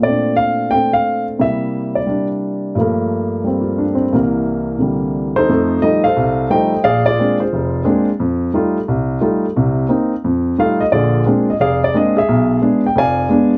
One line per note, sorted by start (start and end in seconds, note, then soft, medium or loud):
0.00 1.37 A#2 soft
0.00 0.69 A3 soft
0.00 0.35 D5 medium
0.06 0.73 C4 soft
0.06 1.43 D4 soft
0.36 0.72 F5 medium
0.71 1.39 A3 soft
0.71 1.41 C4 soft
0.71 0.93 G5 medium
0.93 1.25 F5 medium
1.39 2.75 C3 soft
1.39 2.05 G3 soft
1.39 2.76 A#3 soft
1.39 2.76 E4 soft
1.39 1.98 E5 medium
1.95 2.27 D5 medium
2.06 2.75 G3 soft
2.06 2.76 D4 soft
2.75 4.12 G2 soft
2.75 4.13 F3 soft
2.75 4.13 A3 soft
2.80 3.44 A#3 soft
3.44 4.12 G3 soft
3.44 4.13 A#3 soft
3.44 3.93 C4 soft
3.61 3.85 F4 soft
3.78 4.04 D4 soft
3.95 4.19 C4 soft
4.13 5.48 C2 soft
4.13 4.77 C3 soft
4.13 5.49 E3 soft
4.13 5.49 A#3 medium
4.78 5.47 C3 soft
4.78 5.48 D3 soft
4.78 5.49 G3 soft
5.36 5.82 D#4 medium
5.36 6.01 A4 soft
5.36 5.79 C5 medium
5.49 5.78 F2 medium
5.49 5.78 A3 medium
5.82 6.05 F3 soft
5.82 6.05 G3 soft
5.82 6.05 A3 soft
5.82 6.06 D#4 medium
5.82 6.04 D#5 medium
6.04 6.69 A4 medium
6.04 6.51 C5 soft
6.04 6.47 F5 medium
6.17 6.46 C2 medium
6.50 6.73 F3 soft
6.50 6.73 G3 soft
6.50 6.73 A3 soft
6.50 6.73 D#4 medium
6.50 6.83 C5 medium
6.50 6.83 D#5 medium
6.50 6.82 G5 medium
6.84 7.13 A#1 medium
6.84 7.06 G#4 medium
6.84 7.04 D5 medium
6.84 7.04 F5 medium
7.06 7.39 F4 medium
7.06 7.39 G#4 medium
7.06 7.37 D5 medium
7.19 7.42 G#3 soft
7.19 7.41 A#3 soft
7.19 7.42 C4 soft
7.19 7.42 D4 medium
7.40 8.04 F4 soft
7.40 8.04 G#4 soft
7.40 8.04 C5 medium
7.53 7.82 F1 medium
7.85 8.08 G#3 medium
7.85 8.08 A#3 soft
7.85 8.08 C4 soft
7.85 8.09 D4 medium
8.20 8.49 F2 medium
8.54 8.77 G3 soft
8.54 8.77 A3 soft
8.54 8.77 D#4 soft
8.54 8.77 F4 medium
8.88 9.17 C2 medium
9.21 9.45 G3 soft
9.21 9.44 A3 soft
9.21 9.45 D#4 soft
9.21 9.44 F4 medium
9.56 9.85 C2 medium
9.56 9.85 C3 medium
9.89 10.12 A#3 soft
9.89 10.12 C4 soft
9.89 10.13 D#4 soft
10.24 10.53 F2 medium
10.58 10.81 G3 soft
10.58 10.81 A3 soft
10.58 10.81 D#4 soft
10.58 10.81 F4 medium
10.58 10.81 F5 medium
10.80 10.85 D#5 medium
10.92 11.22 A#1 medium
10.92 11.22 D3 medium
10.92 11.56 F4 medium
10.92 11.56 G#4 medium
10.92 11.23 D5 medium
11.26 11.49 G#3 soft
11.26 11.49 A#3 soft
11.26 11.49 C4 soft
11.26 11.49 D4 medium
11.50 11.55 D#5 medium
11.60 11.89 F1 medium
11.60 12.15 G#4 medium
11.60 11.83 D5 medium
11.60 11.81 F5 medium
11.84 11.95 D5 medium
11.94 12.17 G#3 medium
11.94 12.17 A#3 soft
11.94 12.17 C4 soft
11.94 12.17 D4 medium
11.94 12.15 D#5 medium
12.17 12.80 G#4 medium
12.17 12.81 E5 medium
12.28 12.57 B1 medium
12.62 12.85 G#3 soft
12.62 12.85 B3 soft
12.62 12.85 D4 medium
12.87 12.98 G5 medium
12.96 13.25 F1 medium
12.96 13.25 F2 medium
12.96 13.58 D5 medium
12.96 13.58 F5 medium
12.96 13.49 G#5 medium
13.29 13.53 G#3 soft
13.29 13.53 B3 soft
13.29 13.53 D4 medium